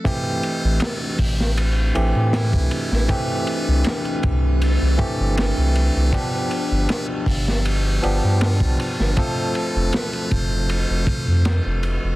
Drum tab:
RD |x-x-x---x-x-x-x-|x-x-xxx-x-x-x-x-|x-x-x---x-x-x-x-|x-x-xxx-x-x-x-x-|
HH |------o---------|----------------|------o---------|----------------|
SD |----o--o----o--o|----o-------o---|----o--o----o--o|----o-------o---|
BD |o-----o------o--|o-----o---o-----|o-----o------o--|o-----o---o-----|